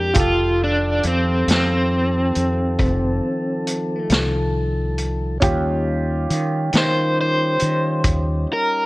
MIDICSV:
0, 0, Header, 1, 6, 480
1, 0, Start_track
1, 0, Tempo, 875912
1, 85, Time_signature, 12, 3, 24, 8
1, 4854, End_track
2, 0, Start_track
2, 0, Title_t, "Overdriven electric guitar"
2, 0, Program_c, 0, 29
2, 0, Note_on_c, 0, 67, 75
2, 89, Note_off_c, 0, 67, 0
2, 112, Note_on_c, 0, 65, 72
2, 332, Note_off_c, 0, 65, 0
2, 349, Note_on_c, 0, 62, 71
2, 570, Note_off_c, 0, 62, 0
2, 588, Note_on_c, 0, 60, 62
2, 810, Note_off_c, 0, 60, 0
2, 829, Note_on_c, 0, 60, 74
2, 2234, Note_off_c, 0, 60, 0
2, 3714, Note_on_c, 0, 72, 74
2, 3933, Note_off_c, 0, 72, 0
2, 3952, Note_on_c, 0, 72, 72
2, 4637, Note_off_c, 0, 72, 0
2, 4674, Note_on_c, 0, 70, 80
2, 4854, Note_off_c, 0, 70, 0
2, 4854, End_track
3, 0, Start_track
3, 0, Title_t, "Upright piano"
3, 0, Program_c, 1, 0
3, 0, Note_on_c, 1, 56, 55
3, 0, Note_on_c, 1, 62, 62
3, 0, Note_on_c, 1, 72, 64
3, 62, Note_off_c, 1, 62, 0
3, 64, Note_off_c, 1, 56, 0
3, 68, Note_off_c, 1, 72, 0
3, 76, Note_on_c, 1, 65, 47
3, 86, Note_on_c, 1, 67, 43
3, 91, Note_on_c, 1, 69, 50
3, 2937, Note_off_c, 1, 65, 0
3, 2943, Note_off_c, 1, 67, 0
3, 2945, Note_off_c, 1, 69, 0
3, 2959, Note_on_c, 1, 61, 51
3, 2969, Note_on_c, 1, 65, 50
3, 2974, Note_on_c, 1, 67, 59
3, 4854, Note_off_c, 1, 61, 0
3, 4854, Note_off_c, 1, 65, 0
3, 4854, Note_off_c, 1, 67, 0
3, 4854, End_track
4, 0, Start_track
4, 0, Title_t, "Tonewheel organ"
4, 0, Program_c, 2, 16
4, 0, Note_on_c, 2, 56, 53
4, 0, Note_on_c, 2, 62, 48
4, 0, Note_on_c, 2, 70, 56
4, 60, Note_off_c, 2, 56, 0
4, 64, Note_off_c, 2, 62, 0
4, 64, Note_off_c, 2, 70, 0
4, 96, Note_on_c, 2, 53, 53
4, 98, Note_on_c, 2, 51, 51
4, 98, Note_on_c, 2, 69, 55
4, 2947, Note_off_c, 2, 53, 0
4, 2948, Note_off_c, 2, 69, 0
4, 2949, Note_off_c, 2, 51, 0
4, 2962, Note_on_c, 2, 63, 51
4, 2965, Note_on_c, 2, 55, 56
4, 2971, Note_on_c, 2, 61, 52
4, 4854, Note_off_c, 2, 55, 0
4, 4854, Note_off_c, 2, 61, 0
4, 4854, Note_off_c, 2, 63, 0
4, 4854, End_track
5, 0, Start_track
5, 0, Title_t, "Fretless electric bass"
5, 0, Program_c, 3, 35
5, 0, Note_on_c, 3, 41, 84
5, 68, Note_off_c, 3, 41, 0
5, 88, Note_on_c, 3, 29, 88
5, 544, Note_off_c, 3, 29, 0
5, 571, Note_on_c, 3, 41, 81
5, 789, Note_off_c, 3, 41, 0
5, 807, Note_on_c, 3, 41, 79
5, 1264, Note_off_c, 3, 41, 0
5, 1295, Note_on_c, 3, 41, 74
5, 1511, Note_off_c, 3, 41, 0
5, 1529, Note_on_c, 3, 29, 86
5, 1747, Note_off_c, 3, 29, 0
5, 2247, Note_on_c, 3, 36, 83
5, 2944, Note_off_c, 3, 36, 0
5, 2973, Note_on_c, 3, 39, 95
5, 3427, Note_off_c, 3, 39, 0
5, 3452, Note_on_c, 3, 51, 85
5, 3669, Note_off_c, 3, 51, 0
5, 3691, Note_on_c, 3, 51, 86
5, 4146, Note_off_c, 3, 51, 0
5, 4175, Note_on_c, 3, 51, 79
5, 4391, Note_off_c, 3, 51, 0
5, 4410, Note_on_c, 3, 39, 91
5, 4628, Note_off_c, 3, 39, 0
5, 4854, End_track
6, 0, Start_track
6, 0, Title_t, "Drums"
6, 79, Note_on_c, 9, 42, 84
6, 87, Note_on_c, 9, 36, 100
6, 134, Note_off_c, 9, 42, 0
6, 141, Note_off_c, 9, 36, 0
6, 566, Note_on_c, 9, 42, 58
6, 621, Note_off_c, 9, 42, 0
6, 811, Note_on_c, 9, 42, 77
6, 825, Note_on_c, 9, 38, 94
6, 865, Note_off_c, 9, 42, 0
6, 880, Note_off_c, 9, 38, 0
6, 1289, Note_on_c, 9, 42, 49
6, 1344, Note_off_c, 9, 42, 0
6, 1528, Note_on_c, 9, 42, 65
6, 1531, Note_on_c, 9, 36, 72
6, 1582, Note_off_c, 9, 42, 0
6, 1586, Note_off_c, 9, 36, 0
6, 2012, Note_on_c, 9, 42, 58
6, 2066, Note_off_c, 9, 42, 0
6, 2247, Note_on_c, 9, 42, 70
6, 2261, Note_on_c, 9, 38, 103
6, 2301, Note_off_c, 9, 42, 0
6, 2316, Note_off_c, 9, 38, 0
6, 2728, Note_on_c, 9, 42, 54
6, 2783, Note_off_c, 9, 42, 0
6, 2968, Note_on_c, 9, 42, 77
6, 2971, Note_on_c, 9, 36, 100
6, 3022, Note_off_c, 9, 42, 0
6, 3026, Note_off_c, 9, 36, 0
6, 3453, Note_on_c, 9, 42, 57
6, 3508, Note_off_c, 9, 42, 0
6, 3686, Note_on_c, 9, 42, 72
6, 3700, Note_on_c, 9, 38, 106
6, 3741, Note_off_c, 9, 42, 0
6, 3755, Note_off_c, 9, 38, 0
6, 4162, Note_on_c, 9, 42, 54
6, 4217, Note_off_c, 9, 42, 0
6, 4405, Note_on_c, 9, 42, 71
6, 4407, Note_on_c, 9, 36, 74
6, 4460, Note_off_c, 9, 42, 0
6, 4462, Note_off_c, 9, 36, 0
6, 4854, End_track
0, 0, End_of_file